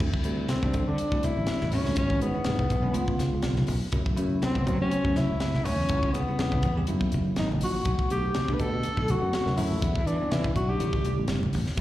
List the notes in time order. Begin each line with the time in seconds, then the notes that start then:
0.00 D2 D3 G3 C4 E4, kick, crash
0.14 kick
0.24 D2 D3 G3 C4 E4, closed hi-hat
0.49 C4, snare, closed hi-hat, high conga
0.63 D3 G3 C4 D4, kick, high conga
0.73 D3, kick, closed hi-hat, low conga
0.88 D3 D4
0.98 closed hi-hat
1.12 D2 D3 G3 C4 E4, kick
1.23 E4, closed hi-hat, high conga
1.37 A1
1.47 snare, closed hi-hat
1.61 A1, snare, high conga
1.72 D3 G3 C4 C#4 E4, open hi-hat, low conga
1.85 D2, snare
1.96 G#1 D3 G#3 B3 C#4 F#4, kick, closed hi-hat
2.10 kick
2.21 G#2 B3, closed hi-hat
2.34 D3 G#3 B3 E4, muted fretless electric bass stroke
2.44 G#2, snare, closed hi-hat, high conga
2.59 kick, high conga
2.70 B1, kick, closed hi-hat, low conga
2.82 D3 G#3 B3 C#4
2.94 C#2 C#3 A3 B3 F4, closed hi-hat
3.08 kick
3.19 muted fretless electric bass stroke, snare, closed hi-hat, high conga
3.33 C#2
3.42 B1, snare, closed hi-hat
3.56 snare, high conga
3.67 B1, open hi-hat, low conga
3.92 F#2 C#3 F#3 A3 E4, kick, closed hi-hat
4.06 muted fretless electric bass stroke, kick
4.16 F#2 C#3 F#3 A3 E4, closed hi-hat
4.42 C4, snare, closed hi-hat, high conga
4.54 C#3 F#3 A3 B3, kick, high conga
4.67 F#3, kick, closed hi-hat, low conga
4.82 F#3 C#4
4.91 closed hi-hat
5.04 F#2 C#3 F#3 A3 E4, kick
5.16 E4, snare, closed hi-hat, high conga
5.31 C#2
5.40 snare, closed hi-hat
5.54 C#2, snare, high conga
5.65 C#3 F#3 A3 C#4, open hi-hat, low conga
5.79 E2
5.89 C#2 C#3 G3 B3 E4, kick, closed hi-hat
6.03 kick
6.13 C#3 B3, closed hi-hat, high conga
6.27 C#3 G3 B3 E4, muted fretless electric bass stroke
6.39 C#3, snare, closed hi-hat, high conga
6.52 kick, high conga, low conga
6.63 E2, kick, closed hi-hat, low conga
6.77 C#3 G3 B3 G4
6.87 F#2 D3 F#3 A#3 E4, closed hi-hat
7.01 kick
7.12 F#1, closed hi-hat, high conga
7.36 G#1 D#4, snare, closed hi-hat
7.52 high conga
7.61 A#1 F#4, open hi-hat
7.85 B1 D3 A3 B3 F#4, kick, closed hi-hat
7.99 kick
8.10 B1 D3 A3 B3 F#4 G4, closed hi-hat
8.34 snare, closed hi-hat, high conga
8.48 D3 A3 B3 D4, kick, high conga
8.54 B4
8.59 B2 A4, kick, closed hi-hat
8.74 B2
8.83 closed hi-hat
8.97 B1 D3 A3 B3 E4, kick
9.08 F#4, closed hi-hat, high conga
9.22 F#2
9.33 F#4, snare, closed hi-hat
9.46 F#2, snare, high conga
9.57 D3 A3 B3 E4 A4, open hi-hat, low conga
9.71 B1
9.82 E2 D3 G3 B3 E4, kick, closed hi-hat
9.96 kick
10.07 E3 D4, closed hi-hat
10.20 D3 G3 B3 C#4, muted fretless electric bass stroke
10.32 E3 E4, snare, closed hi-hat, high conga
10.44 kick, high conga
10.56 B1 F#4, kick, closed hi-hat
10.69 D3 G3 B3 D4 G4
10.80 A1 C#3 G3 A3 E4, closed hi-hat
10.93 kick
11.05 closed hi-hat, high conga
11.18 A1
11.28 G1, snare, closed hi-hat
11.43 high conga
11.53 A1, open hi-hat, low conga
11.67 snare
11.77 D2, kick, closed hi-hat